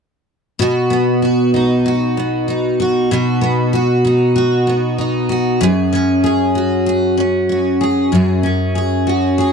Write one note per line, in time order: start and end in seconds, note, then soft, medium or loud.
0.59 3.10 B2 medium
0.59 1.22 F#4 medium
0.90 2.16 B3 medium
1.22 1.85 F#4 medium
1.54 2.47 D#4 medium
1.86 2.79 F#4 medium
2.17 3.40 B3 soft
2.48 4.03 D#4 soft
2.80 3.11 F#4 medium
3.11 5.62 B2 medium
3.11 3.73 F#4 medium
3.41 4.66 B3 medium
3.73 4.35 F#4 medium
4.05 4.97 D#4 soft
4.36 5.29 F#4 medium
4.67 5.69 B3 soft
4.98 5.69 D#4 soft
5.29 5.61 F#4 medium
5.61 8.11 F#2 medium
5.61 6.22 G#4 medium
5.93 7.16 C#4 medium
6.24 6.85 G#4 medium
6.55 7.49 F#4 soft
6.86 7.79 G#4 medium
7.17 8.42 C#4 soft
7.49 9.06 F#4 soft
7.81 8.11 G#4 medium
8.12 9.53 F#2 medium
8.12 8.74 G#4 medium
8.43 9.53 C#4 soft
8.75 9.37 G#4 medium
9.07 9.53 F#4 medium
9.38 9.53 G#4 medium